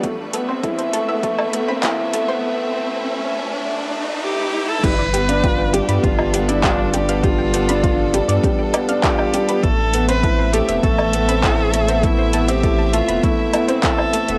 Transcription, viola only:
X:1
M:4/4
L:1/16
Q:1/4=100
K:Gmix
V:1 name="Viola"
z16 | z12 G3 A | B6 G2 F3 E D2 G2 | F6 z6 G4 |
A3 B3 G2 A8 | E3 G3 F2 E4 A4 |]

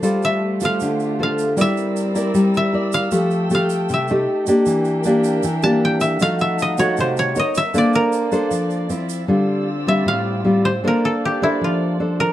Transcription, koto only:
X:1
M:4/4
L:1/8
Q:1/4=156
K:Dm
V:1 name="Koto"
z e2 f3 f2 | e2 z3 e2 f- | f2 f2 e2 z2 | z4 z a g e |
f e _e ^c =c ^c ^d =e | d B z6 | z3 e f3 c | B A G E F z2 B |]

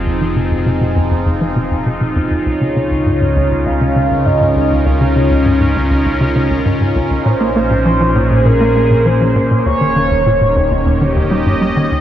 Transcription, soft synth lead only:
X:1
M:4/4
L:1/8
Q:1/4=100
K:Dblyd
V:1 name="Soft synth lead"
z8 | d4 f2 e2 | d4 z4 | c4 B2 c2 |
d6 z2 |]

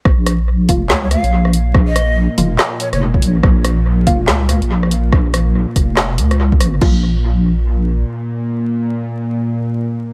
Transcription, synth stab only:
X:1
M:4/4
L:1/16
Q:"Swing 16ths" 1/4=142
K:Bbm
V:1 name="Synth stab"
z6 [F,B,F]2 z8 | z6 [F,B,F] z8 z | z6 [F,B,F]2 z8 | z16 |
[F,B,F]16- | [F,B,F]16 |]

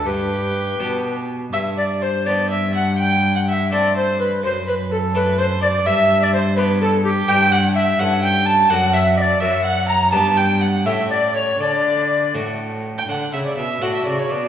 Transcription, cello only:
X:1
M:6/8
L:1/8
Q:3/8=83
K:G
V:1 name="Cello" clef=bass
G,,3 B,,3 | G,,6- | G,,6 | F,,6 |
G,,6 | [K:D] G,,3 G,,3 | F,,3 F,,3 | G,,3 A,,3 |
D,3 A,,3 | D, C, B,, A,, C, B,, |]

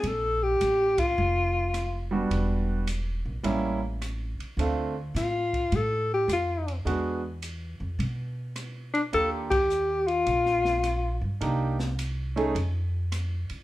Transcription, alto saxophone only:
X:1
M:4/4
L:1/16
Q:"Swing" 1/4=105
K:Bb
V:1 name="Alto saxophone"
A2 G4 F8 z2 | z16 | z4 F4 A2 G2 F3 z | z12 z2 D2 |
A2 G4 F8 z2 | z16 |]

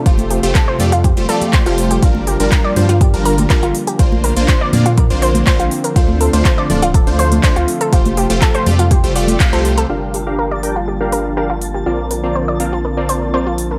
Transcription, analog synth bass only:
X:1
M:4/4
L:1/16
Q:1/4=122
K:Gm
V:1 name="Analog synth bass" clef=bass
F,,,3 F,,, z2 F,,3 F,,, z3 F,,,3 | G,,,3 G,,, z2 G,,3 G,,,3 z G,,, z2 | B,,,3 B,,, z2 B,,3 B,,,3 z B,,, z2 | D,,3 D,, z2 D,,,3 D,,3 z D,, z2 |
F,,,3 F,,, z2 F,,3 F,,,3 z C,,3 | G,,,16 | B,,,16 |]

